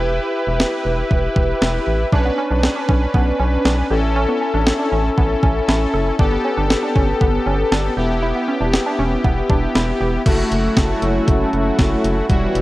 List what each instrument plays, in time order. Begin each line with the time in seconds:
Already playing: analog synth bass E1, analog polysynth E4 G4 B4
0.47 analog synth bass E1
0.60 snare
0.85 analog synth bass E1
1.11 analog synth bass E1, kick
1.36 analog synth bass E1, kick
1.62 analog synth bass E1, snare
1.87 analog synth bass A1
2.13 analog synth bass B1, analog polysynth C#4 D4 B4, synth pluck D4, kick
2.25 synth pluck B3
2.38 synth pluck C#4
2.51 analog synth bass B1, synth pluck D4
2.63 snare
2.76 synth pluck D4
2.89 analog synth bass B1, synth pluck C#4, kick
3.14 analog synth bass B1, synth pluck B3, kick
3.40 analog synth bass B1, synth pluck C#4
3.65 analog synth bass B1, synth pluck D4, snare
3.90 analog synth bass A1, analog polysynth C#4 E4 A4, synth pluck G4
4.16 synth pluck C#4
4.29 synth pluck B3
4.41 synth pluck C#4
4.54 analog synth bass A1, synth pluck D4
4.67 snare
4.79 synth pluck D4
4.92 analog synth bass A1, synth pluck C#4
5.17 analog synth bass A1, synth pluck B3, kick
5.43 analog synth bass A1, synth pluck C#4, kick
5.68 analog synth bass A1, synth pluck E4, snare
5.94 analog synth bass F#1, synth pluck A4
6.19 analog synth bass G1, analog polysynth B3 G4 A4, synth pluck D4, kick
6.32 synth pluck B3
6.45 synth pluck C#4
6.57 analog synth bass G1, synth pluck D4
6.70 snare
6.83 synth pluck D4
6.95 analog synth bass G1, synth pluck C#4, kick
7.21 analog synth bass G1, synth pluck B3, kick
7.46 analog synth bass G1, synth pluck C#4
7.72 analog synth bass G1, synth pluck D4, snare
7.97 analog synth bass E1, analog polysynth B3 E4 G4, synth pluck G4
8.23 synth pluck E4
8.35 synth pluck B3
8.48 synth pluck C#4
8.61 analog synth bass E1, synth pluck D4
8.74 snare
8.86 synth pluck D4
8.99 analog synth bass E1, synth pluck C#4
9.24 analog synth bass E1, synth pluck B3, kick
9.50 analog synth bass E1, synth pluck D4, kick
9.75 analog synth bass E1, synth pluck E4, snare
10.01 analog synth bass E1, synth pluck G4
10.26 analog synth bass F#1, analog synth pad F#3 C#4 E4 A4, analog polysynth A3 E4 F#4, kick, closed hi-hat, crash
10.52 analog synth bass F#1, closed hi-hat
10.77 analog synth bass F#1, kick, snare, closed hi-hat
11.02 analog synth bass F#1, closed hi-hat
11.28 analog synth bass F#1, kick, closed hi-hat
11.53 analog synth bass F#1, closed hi-hat
11.79 analog synth bass F#1, kick, snare, closed hi-hat
12.04 analog synth bass F#1, closed hi-hat
12.29 analog synth bass E1, analog synth pad E3 G3 B3 F#4, analog polysynth G3 E4 F#4, kick, closed hi-hat
12.55 analog synth bass E1, closed hi-hat